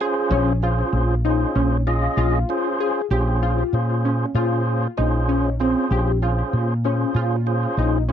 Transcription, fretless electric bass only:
0, 0, Header, 1, 2, 480
1, 0, Start_track
1, 0, Key_signature, -5, "minor"
1, 0, Tempo, 621118
1, 246, Time_signature, 9, 3, 24, 8
1, 6277, End_track
2, 0, Start_track
2, 0, Title_t, "Fretless electric bass"
2, 0, Program_c, 0, 35
2, 236, Note_on_c, 0, 34, 118
2, 630, Note_off_c, 0, 34, 0
2, 715, Note_on_c, 0, 34, 86
2, 1110, Note_off_c, 0, 34, 0
2, 1200, Note_on_c, 0, 34, 86
2, 1593, Note_off_c, 0, 34, 0
2, 1676, Note_on_c, 0, 34, 83
2, 1875, Note_off_c, 0, 34, 0
2, 2399, Note_on_c, 0, 34, 88
2, 2792, Note_off_c, 0, 34, 0
2, 2880, Note_on_c, 0, 46, 81
2, 3273, Note_off_c, 0, 46, 0
2, 3357, Note_on_c, 0, 46, 77
2, 3751, Note_off_c, 0, 46, 0
2, 3851, Note_on_c, 0, 34, 75
2, 4433, Note_off_c, 0, 34, 0
2, 4564, Note_on_c, 0, 34, 93
2, 4954, Note_off_c, 0, 34, 0
2, 5047, Note_on_c, 0, 46, 79
2, 5436, Note_off_c, 0, 46, 0
2, 5521, Note_on_c, 0, 46, 87
2, 5912, Note_off_c, 0, 46, 0
2, 6006, Note_on_c, 0, 34, 77
2, 6277, Note_off_c, 0, 34, 0
2, 6277, End_track
0, 0, End_of_file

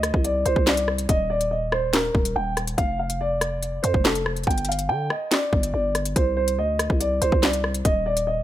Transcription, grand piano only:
0, 0, Header, 1, 2, 480
1, 0, Start_track
1, 0, Tempo, 422535
1, 1238, Time_signature, 4, 2, 24, 8
1, 9580, End_track
2, 0, Start_track
2, 0, Title_t, "Grand piano"
2, 0, Program_c, 0, 0
2, 0, Note_on_c, 0, 75, 85
2, 251, Note_off_c, 0, 75, 0
2, 278, Note_on_c, 0, 74, 84
2, 503, Note_off_c, 0, 74, 0
2, 517, Note_on_c, 0, 72, 89
2, 743, Note_off_c, 0, 72, 0
2, 756, Note_on_c, 0, 74, 82
2, 983, Note_off_c, 0, 74, 0
2, 1241, Note_on_c, 0, 75, 91
2, 1465, Note_off_c, 0, 75, 0
2, 1476, Note_on_c, 0, 74, 90
2, 1703, Note_off_c, 0, 74, 0
2, 1716, Note_on_c, 0, 75, 71
2, 1943, Note_off_c, 0, 75, 0
2, 1953, Note_on_c, 0, 72, 78
2, 2181, Note_off_c, 0, 72, 0
2, 2199, Note_on_c, 0, 70, 84
2, 2650, Note_off_c, 0, 70, 0
2, 2679, Note_on_c, 0, 79, 78
2, 2904, Note_off_c, 0, 79, 0
2, 3155, Note_on_c, 0, 77, 92
2, 3382, Note_off_c, 0, 77, 0
2, 3401, Note_on_c, 0, 77, 75
2, 3625, Note_off_c, 0, 77, 0
2, 3644, Note_on_c, 0, 74, 91
2, 4318, Note_off_c, 0, 74, 0
2, 4346, Note_on_c, 0, 72, 81
2, 4578, Note_off_c, 0, 72, 0
2, 4597, Note_on_c, 0, 69, 80
2, 4823, Note_off_c, 0, 69, 0
2, 5080, Note_on_c, 0, 79, 83
2, 5305, Note_off_c, 0, 79, 0
2, 5324, Note_on_c, 0, 77, 70
2, 5547, Note_off_c, 0, 77, 0
2, 5555, Note_on_c, 0, 79, 91
2, 5782, Note_off_c, 0, 79, 0
2, 5805, Note_on_c, 0, 75, 76
2, 6027, Note_off_c, 0, 75, 0
2, 6045, Note_on_c, 0, 74, 93
2, 6493, Note_off_c, 0, 74, 0
2, 6518, Note_on_c, 0, 74, 81
2, 6744, Note_off_c, 0, 74, 0
2, 7009, Note_on_c, 0, 72, 80
2, 7215, Note_off_c, 0, 72, 0
2, 7232, Note_on_c, 0, 72, 85
2, 7461, Note_off_c, 0, 72, 0
2, 7482, Note_on_c, 0, 75, 84
2, 7931, Note_off_c, 0, 75, 0
2, 7957, Note_on_c, 0, 74, 85
2, 8183, Note_off_c, 0, 74, 0
2, 8197, Note_on_c, 0, 72, 92
2, 8423, Note_off_c, 0, 72, 0
2, 8436, Note_on_c, 0, 74, 83
2, 8663, Note_off_c, 0, 74, 0
2, 8920, Note_on_c, 0, 75, 90
2, 9145, Note_off_c, 0, 75, 0
2, 9156, Note_on_c, 0, 74, 89
2, 9383, Note_off_c, 0, 74, 0
2, 9395, Note_on_c, 0, 75, 74
2, 9580, Note_off_c, 0, 75, 0
2, 9580, End_track
0, 0, End_of_file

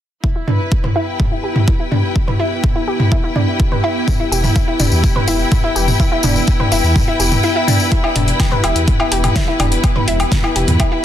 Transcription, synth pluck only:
0, 0, Header, 1, 2, 480
1, 0, Start_track
1, 0, Key_signature, 1, "minor"
1, 0, Tempo, 480000
1, 237, Time_signature, 4, 2, 24, 8
1, 11049, End_track
2, 0, Start_track
2, 0, Title_t, "Synth pluck"
2, 0, Program_c, 0, 84
2, 236, Note_on_c, 0, 64, 76
2, 310, Note_off_c, 0, 64, 0
2, 357, Note_on_c, 0, 64, 72
2, 467, Note_off_c, 0, 64, 0
2, 476, Note_on_c, 0, 62, 75
2, 550, Note_off_c, 0, 62, 0
2, 836, Note_on_c, 0, 71, 77
2, 910, Note_off_c, 0, 71, 0
2, 956, Note_on_c, 0, 64, 99
2, 1001, Note_off_c, 0, 64, 0
2, 1317, Note_on_c, 0, 64, 76
2, 1426, Note_off_c, 0, 64, 0
2, 1436, Note_on_c, 0, 67, 74
2, 1510, Note_off_c, 0, 67, 0
2, 1676, Note_on_c, 0, 64, 78
2, 1750, Note_off_c, 0, 64, 0
2, 1796, Note_on_c, 0, 64, 75
2, 1906, Note_off_c, 0, 64, 0
2, 1915, Note_on_c, 0, 62, 73
2, 1990, Note_off_c, 0, 62, 0
2, 2276, Note_on_c, 0, 71, 76
2, 2350, Note_off_c, 0, 71, 0
2, 2394, Note_on_c, 0, 64, 102
2, 2440, Note_off_c, 0, 64, 0
2, 2756, Note_on_c, 0, 64, 76
2, 2866, Note_off_c, 0, 64, 0
2, 2876, Note_on_c, 0, 67, 74
2, 2950, Note_off_c, 0, 67, 0
2, 3116, Note_on_c, 0, 64, 84
2, 3190, Note_off_c, 0, 64, 0
2, 3238, Note_on_c, 0, 64, 75
2, 3347, Note_off_c, 0, 64, 0
2, 3357, Note_on_c, 0, 62, 73
2, 3431, Note_off_c, 0, 62, 0
2, 3718, Note_on_c, 0, 71, 75
2, 3790, Note_off_c, 0, 71, 0
2, 3836, Note_on_c, 0, 64, 99
2, 3881, Note_off_c, 0, 64, 0
2, 4198, Note_on_c, 0, 64, 78
2, 4307, Note_off_c, 0, 64, 0
2, 4317, Note_on_c, 0, 67, 78
2, 4391, Note_off_c, 0, 67, 0
2, 4556, Note_on_c, 0, 64, 83
2, 4630, Note_off_c, 0, 64, 0
2, 4677, Note_on_c, 0, 64, 76
2, 4787, Note_off_c, 0, 64, 0
2, 4796, Note_on_c, 0, 62, 75
2, 4871, Note_off_c, 0, 62, 0
2, 5158, Note_on_c, 0, 71, 75
2, 5230, Note_off_c, 0, 71, 0
2, 5276, Note_on_c, 0, 64, 103
2, 5321, Note_off_c, 0, 64, 0
2, 5638, Note_on_c, 0, 64, 77
2, 5747, Note_off_c, 0, 64, 0
2, 5757, Note_on_c, 0, 67, 75
2, 5831, Note_off_c, 0, 67, 0
2, 5996, Note_on_c, 0, 64, 78
2, 6070, Note_off_c, 0, 64, 0
2, 6118, Note_on_c, 0, 64, 74
2, 6227, Note_off_c, 0, 64, 0
2, 6236, Note_on_c, 0, 62, 80
2, 6310, Note_off_c, 0, 62, 0
2, 6598, Note_on_c, 0, 71, 75
2, 6671, Note_off_c, 0, 71, 0
2, 6717, Note_on_c, 0, 64, 93
2, 6761, Note_off_c, 0, 64, 0
2, 7078, Note_on_c, 0, 64, 79
2, 7187, Note_off_c, 0, 64, 0
2, 7197, Note_on_c, 0, 67, 73
2, 7271, Note_off_c, 0, 67, 0
2, 7436, Note_on_c, 0, 64, 79
2, 7510, Note_off_c, 0, 64, 0
2, 7557, Note_on_c, 0, 64, 78
2, 7667, Note_off_c, 0, 64, 0
2, 7676, Note_on_c, 0, 62, 76
2, 7750, Note_off_c, 0, 62, 0
2, 7916, Note_on_c, 0, 64, 79
2, 7990, Note_off_c, 0, 64, 0
2, 8037, Note_on_c, 0, 64, 76
2, 8146, Note_off_c, 0, 64, 0
2, 8156, Note_on_c, 0, 62, 79
2, 8230, Note_off_c, 0, 62, 0
2, 8516, Note_on_c, 0, 71, 76
2, 8590, Note_off_c, 0, 71, 0
2, 8636, Note_on_c, 0, 64, 97
2, 8681, Note_off_c, 0, 64, 0
2, 8996, Note_on_c, 0, 64, 78
2, 9106, Note_off_c, 0, 64, 0
2, 9116, Note_on_c, 0, 67, 76
2, 9190, Note_off_c, 0, 67, 0
2, 9356, Note_on_c, 0, 64, 83
2, 9430, Note_off_c, 0, 64, 0
2, 9477, Note_on_c, 0, 64, 77
2, 9587, Note_off_c, 0, 64, 0
2, 9595, Note_on_c, 0, 62, 76
2, 9670, Note_off_c, 0, 62, 0
2, 9957, Note_on_c, 0, 71, 79
2, 10030, Note_off_c, 0, 71, 0
2, 10075, Note_on_c, 0, 64, 101
2, 10120, Note_off_c, 0, 64, 0
2, 10436, Note_on_c, 0, 64, 78
2, 10546, Note_off_c, 0, 64, 0
2, 10556, Note_on_c, 0, 67, 73
2, 10630, Note_off_c, 0, 67, 0
2, 10796, Note_on_c, 0, 64, 83
2, 10870, Note_off_c, 0, 64, 0
2, 10917, Note_on_c, 0, 64, 79
2, 11026, Note_off_c, 0, 64, 0
2, 11049, End_track
0, 0, End_of_file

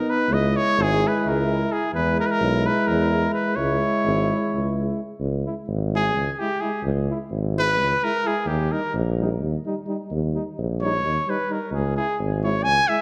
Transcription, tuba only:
0, 0, Header, 1, 2, 480
1, 0, Start_track
1, 0, Tempo, 467654
1, 306, Time_signature, 7, 3, 24, 8
1, 7265, Tempo, 462963
1, 13422, End_track
2, 0, Start_track
2, 0, Title_t, "Tuba"
2, 0, Program_c, 0, 58
2, 296, Note_on_c, 0, 37, 93
2, 570, Note_off_c, 0, 37, 0
2, 801, Note_on_c, 0, 32, 114
2, 1073, Note_off_c, 0, 32, 0
2, 1282, Note_on_c, 0, 37, 90
2, 1669, Note_off_c, 0, 37, 0
2, 1977, Note_on_c, 0, 40, 92
2, 2252, Note_off_c, 0, 40, 0
2, 2469, Note_on_c, 0, 35, 107
2, 2744, Note_off_c, 0, 35, 0
2, 2957, Note_on_c, 0, 40, 90
2, 3345, Note_off_c, 0, 40, 0
2, 3665, Note_on_c, 0, 37, 94
2, 3938, Note_off_c, 0, 37, 0
2, 4164, Note_on_c, 0, 32, 100
2, 4435, Note_off_c, 0, 32, 0
2, 4653, Note_on_c, 0, 37, 71
2, 5036, Note_off_c, 0, 37, 0
2, 5334, Note_on_c, 0, 37, 81
2, 5609, Note_off_c, 0, 37, 0
2, 5826, Note_on_c, 0, 32, 92
2, 6308, Note_on_c, 0, 37, 80
2, 6323, Note_off_c, 0, 32, 0
2, 6451, Note_off_c, 0, 37, 0
2, 7014, Note_on_c, 0, 37, 99
2, 7287, Note_off_c, 0, 37, 0
2, 7501, Note_on_c, 0, 32, 94
2, 8011, Note_on_c, 0, 37, 85
2, 8027, Note_off_c, 0, 32, 0
2, 8149, Note_off_c, 0, 37, 0
2, 8698, Note_on_c, 0, 39, 94
2, 8974, Note_off_c, 0, 39, 0
2, 9197, Note_on_c, 0, 34, 112
2, 9693, Note_on_c, 0, 39, 96
2, 9708, Note_off_c, 0, 34, 0
2, 9831, Note_off_c, 0, 39, 0
2, 10407, Note_on_c, 0, 39, 86
2, 10674, Note_off_c, 0, 39, 0
2, 10899, Note_on_c, 0, 34, 84
2, 11377, Note_on_c, 0, 39, 77
2, 11393, Note_off_c, 0, 34, 0
2, 11514, Note_off_c, 0, 39, 0
2, 12075, Note_on_c, 0, 37, 95
2, 12344, Note_off_c, 0, 37, 0
2, 12565, Note_on_c, 0, 32, 98
2, 13061, Note_on_c, 0, 37, 87
2, 13077, Note_off_c, 0, 32, 0
2, 13195, Note_off_c, 0, 37, 0
2, 13422, End_track
0, 0, End_of_file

